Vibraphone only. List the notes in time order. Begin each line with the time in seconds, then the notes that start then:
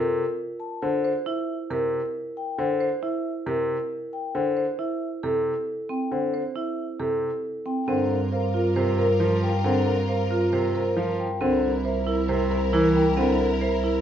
Already playing: A4
0.60 A5
0.82 C5
1.27 E5
1.71 G4
2.37 G5
2.59 C5
3.02 E5
3.47 G4
4.13 G5
4.35 C5
4.79 E5
5.23 G4
5.90 G5
6.12 C5
6.56 E5
6.99 G4
7.66 G5
7.88 C5
8.33 F5
8.76 G4
8.99 C5
9.43 G5
9.65 C5
10.09 F5
10.54 G4
10.75 C5
11.19 G5
11.41 C5
11.85 E5
12.30 G4
12.52 C5
12.95 G5
13.17 C5
13.61 E5